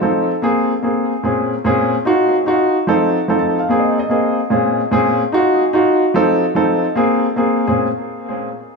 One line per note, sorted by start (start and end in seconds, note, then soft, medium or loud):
0.01 0.30 F3 medium
0.01 0.30 C4 medium
0.01 0.31 D#4 medium
0.01 0.31 A4 medium
0.42 0.71 A#3 medium
0.42 0.71 C4 medium
0.42 0.72 G#4 loud
0.83 1.12 A#3 medium
0.83 1.12 C4 medium
0.83 1.12 G#4 medium
1.23 1.52 A#2 medium
1.23 1.53 C4 medium
1.23 1.53 C#4 medium
1.23 1.53 G#4 medium
1.65 1.93 A#2 medium
1.65 1.94 C4 medium
1.65 1.94 C#4 medium
1.65 1.94 G#4 loud
2.05 2.34 D#4 medium
2.05 2.35 F4 medium
2.05 2.35 F#4 loud
2.46 2.75 D#4 medium
2.46 2.76 F4 medium
2.46 2.76 F#4 loud
2.87 3.16 F3 medium
2.87 3.16 C4 medium
2.87 3.17 D#4 medium
2.87 3.17 A4 loud
3.28 3.57 F3 medium
3.28 3.57 C4 medium
3.28 3.58 D#4 medium
3.28 3.58 A4 medium
3.39 3.58 A5 medium
3.60 3.78 F5 medium
3.69 3.98 A#3 medium
3.69 3.98 C4 medium
3.69 3.99 G#4 medium
3.80 3.98 D#5 medium
3.99 4.38 D#5 medium
4.09 4.38 A#3 medium
4.09 4.39 C4 medium
4.09 4.39 G#4 medium
4.50 4.79 A#2 medium
4.50 4.79 C4 medium
4.50 4.80 C#4 medium
4.50 4.80 G#4 medium
4.91 5.20 A#2 loud
4.91 5.20 C4 medium
4.91 5.21 C#4 medium
4.91 5.21 G#4 loud
5.32 5.61 D#4 medium
5.32 5.62 F4 medium
5.32 5.62 F#4 loud
5.73 6.02 D#4 medium
5.73 6.03 F4 medium
5.73 6.03 F#4 loud
6.14 6.43 F3 medium
6.14 6.43 C4 medium
6.14 6.43 D#4 medium
6.14 6.44 A4 loud
6.55 6.84 F3 medium
6.55 6.84 C4 medium
6.55 6.84 D#4 medium
6.55 6.84 A4 loud
6.95 7.24 A#3 medium
6.95 7.25 C4 medium
6.95 7.25 G#4 loud
7.36 7.65 A#3 medium
7.36 7.65 C4 medium
7.36 7.66 G#4 medium
7.67 7.86 A#2 medium
7.67 7.86 C4 medium
7.67 7.86 C#4 medium
7.67 7.86 G#4 medium